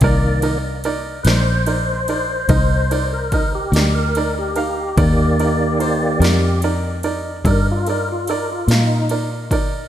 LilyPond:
<<
  \new Staff \with { instrumentName = "Upright piano" } { \time 12/8 \key c \minor \tempo 4. = 48 <ees' bes' d''>8 <ees' bes' ees''>8 <ees' bes' d''>8 <ees' bes' d''>8 <ees' bes' d''>8 <ees' bes' d''>8 <ees' bes' ees''>8 <ees' bes' d''>8 <ees' bes' ees''>8 <ees' bes' d''>8 <ees' bes' d''>8 <ees' bes' f''>8 | <ees' bes' d''>8 <ees' bes' d''>8 <ees' bes' c''>8 <ees' bes' d''>8 <ees' bes' d''>8 <ees' bes' d''>8 <ees' bes' d''>8 <ees' bes' d''>8 <ees' bes' d''>8 <ees' bes' f''>8 <ees' bes' d''>8 <ees' bes' d''>8 | }
  \new Staff \with { instrumentName = "Tonewheel organ" } { \time 12/8 \key c \minor r4. <b' c''>2~ <b' c''>16 bes'8 g'8 bes'8 g'8. | <fis' g'>2 r4 <a' bes'>16 f'16 <a' bes'>16 f'16 <a' bes'>16 f'16 ees'8 r4 | }
  \new Staff \with { instrumentName = "Tonewheel organ" } { \time 12/8 \key c \minor <ees bes d''>8 r1 r4. | <ees bes d''>4. r1 r8 | }
  \new Staff \with { instrumentName = "Fingered electric bass" } { \clef bass \time 12/8 \key c \minor c,4. bes,,4. c,4. d,4. | ees,4. f,4. g,4. bes,4. | }
  \new DrumStaff \with { instrumentName = "Drums" } \drummode { \time 12/8 <bd cymr>8 cymr8 cymr8 <cymr sn>8 cymr8 cymr8 <bd cymr>8 cymr8 <bd cymr>8 <cymr sn>8 cymr8 cymr8 | <bd cymr>8 cymr8 cymr8 <cymr sn>8 cymr8 cymr8 <bd cymr>8 cymr8 cymr8 <cymr sn>8 cymr8 <bd cymr>8 | }
>>